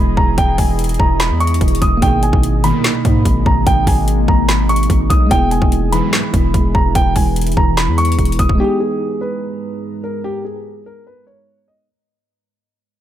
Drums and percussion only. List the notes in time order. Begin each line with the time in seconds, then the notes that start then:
0.17 kick
0.38 kick, closed hi-hat
0.58 kick, open hi-hat
0.79 closed hi-hat
0.84 closed hi-hat
0.89 closed hi-hat
0.94 closed hi-hat
1.00 kick
1.20 snare, clap, closed hi-hat
1.40 closed hi-hat
1.47 closed hi-hat
1.54 closed hi-hat
1.61 kick, closed hi-hat
1.68 closed hi-hat
1.75 closed hi-hat
1.82 kick, closed hi-hat
2.02 kick, closed hi-hat
2.23 closed hi-hat
2.33 kick
2.43 closed hi-hat
2.64 closed hi-hat
2.84 snare, clap, closed hi-hat
3.05 kick, closed hi-hat
3.25 kick, closed hi-hat
3.46 kick
3.67 kick, closed hi-hat
3.87 kick, open hi-hat
4.08 closed hi-hat
4.28 kick
4.49 snare, clap, closed hi-hat
4.69 closed hi-hat
4.76 closed hi-hat
4.83 closed hi-hat
4.90 kick, closed hi-hat
5.10 kick, closed hi-hat
5.31 kick, closed hi-hat
5.51 closed hi-hat
5.62 kick
5.72 closed hi-hat
5.93 closed hi-hat
6.13 snare, clap, closed hi-hat
6.34 kick, closed hi-hat
6.54 kick, closed hi-hat
6.75 kick
6.95 kick, closed hi-hat
7.16 kick, open hi-hat
7.36 closed hi-hat
7.41 closed hi-hat
7.47 closed hi-hat
7.52 closed hi-hat
7.57 kick
7.77 snare, clap, closed hi-hat
7.98 closed hi-hat
8.05 closed hi-hat
8.12 closed hi-hat
8.19 kick, closed hi-hat
8.25 closed hi-hat
8.32 closed hi-hat
8.39 kick, closed hi-hat
8.49 kick